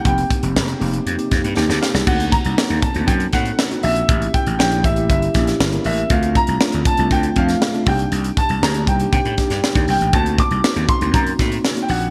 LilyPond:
<<
  \new Staff \with { instrumentName = "Grand piano" } { \time 4/4 \key d \phrygian \tempo 4 = 119 g''2. r8 f''8 | fis''8 bes''4 a''8 g''8 fis''4 e''8~ | e''8 g''8 g''8 e''8 e''4. e''8 | f''8 bes''4 a''8 g''8 f''4 g''8~ |
g''8 a''8 bes''8 g''8 g''4. g''8 | a''8 d'''4 c'''8 bes''8 r8. r32 g''32 fis''8 | }
  \new Staff \with { instrumentName = "Tine electric piano" } { \time 4/4 \key d \phrygian << { r2. a''8 g''8 | r1 | r1 | r1 |
r1 | r1 | } \\ { <bes c' ees' g'>8. <bes c' ees' g'>8. <bes c' ees' g'>8. <bes c' ees' g'>8. <bes c' ees' g'>8. r16 | <bes c' ees' fis'>8. r16 <bes c' ees' a'>8. <bes c' ees' fis'>8. <bes c' ees' a'>8. <bes c' ees' fis'>8. | <bes cis' e' g'>8. r16 <bes cis' e' g'>8. <bes cis' e' g'>8. <bes cis' e' g'>8. <bes cis' e' bes'>8. | <a c' d' f'>8. r16 <a c' d' f'>8. <a c' d' f'>8. <a c' d' f'>8. <a c' d' f'>16 <bes d' ees' g'>8~ |
<bes d' ees' g'>8. r16 <bes d' ees' g'>8. <bes d' ees' g'>8. <bes d' ees' g'>8. <bes d' ees' g'>8. | <bes c' ees' fis'>8. r16 <bes c' ees' fis'>8. <bes c' ees' fis'>8. <bes c' ees' fis'>8. <bes c' ees' fis'>8. | } >> }
  \new Staff \with { instrumentName = "Slap bass" } { \clef bass \time 4/4 \key d \phrygian f,,8 r16 f,,16 f,,8 f,,8 f,16 r16 f,16 g,16 ees,16 d,16 r16 c,16 | d,8. c,16 r16 ees,16 r16 d,16 fis,8 a,8 r8 bes,,8 | a,,8 r16 a,,16 bes,,8 a,,8 g,,8 bes,,8 g,,8 a,,8 | d,8. c,16 r16 d,16 r16 c,16 d,8 f,8 r8 c,8 |
c,8 r16 c,16 d,8 c,8 c16 a,16 r16 g,16 r16 ees,16 c,16 a,,16 | d,8. c,16 r16 ees,16 r16 d,16 fis,8 a,8 r8 bes,,8 | }
  \new DrumStaff \with { instrumentName = "Drums" } \drummode { \time 4/4 <hh bd>16 hh16 <hh bd>16 hh16 sn16 hh16 hho16 hh16 hh16 hh16 <hh bd sn>16 hh16 sn16 sn16 sn16 sn16 | <cymc bd>16 hh16 <hh bd>16 hh16 sn16 hh16 <hh bd>16 hh16 <hh bd>16 hh16 <hh bd sn>16 hh16 sn16 hh16 hho16 hh16 | <hh bd>16 hh16 <hh bd>16 hh16 sn16 hh16 <hh bd>16 hh16 <hh bd>16 hh16 <hh bd sn>16 <hh sn>16 sn16 hh16 hho16 hh16 | <hh bd>16 hh16 <hh bd>16 hh16 sn16 hh16 <hh bd>16 hh16 <hh bd>16 hh16 <hh bd>16 <hh sn>16 sn16 hh16 <hho bd>16 hh16 |
hh16 hh16 <hh bd>16 hh16 sn16 hh16 <hh bd>16 hh16 <hh bd>16 hh16 <hh bd sn>16 <hh sn>16 sn16 <hh bd>16 hho16 hh16 | <hh bd>16 hh16 <hh bd>16 hh16 sn16 hh16 <hh bd>16 hh16 <hh bd>16 hh16 <hh bd sn>16 hh16 sn16 hh16 hho16 hh16 | }
>>